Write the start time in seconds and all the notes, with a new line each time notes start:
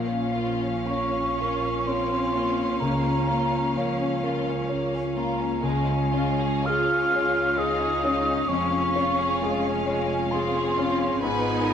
Already playing: A#1 A#2 F3 C#4 F4 F5
0.06 C#4
0.33 A#3 F4
0.62 C#4
0.87 A#3 C#4 F4 C#5 C#6
1.15 C#4
1.40 F4 A#4
1.65 C#4
1.86 A#3 C4 C#5 C6
2.12 C#4
2.35 A#3 F4
2.59 C#4
2.79 C#2 A#3 C#4 F4 A#5
3.06 C#4
3.29 A#3 F4
3.53 C#4
3.75 F3 A#3 C#4 F4 C#5 F5
4.00 C#4
4.23 F4 A#4
4.50 C#4
4.69 A#3 C#5
4.94 C#4
5.16 A#3 F4 A#5
5.41 C#4
5.62 C#2 G#3 C#4 F4 F5 G#5
5.88 C#4
6.13 C#4 F4
6.40 G#4
6.64 G#3 F4 G#4 F6
6.90 C#4
7.12 G#3 C#5
7.35 C#4
7.57 D#4 F4 G#4 D#6
7.82 G#4
8.02 C#4 F4
8.26 C#4
8.46 F1 F2 G#3 C#6
8.50 G#3 C#4 F4
8.71 C#4
8.93 C#4 F4
9.18 G#4
9.40 G#3 F4 G#4 G#5
9.63 C#4
9.86 G#3 C#5
10.10 C#4
10.32 C4 F4 G#4 C6
10.55 G#4
10.76 C#4 F4
10.98 C#4
11.20 G#1 G#2 G#3 B3 D#4 F4 B4 G#5 B5
11.65 D#4 A#4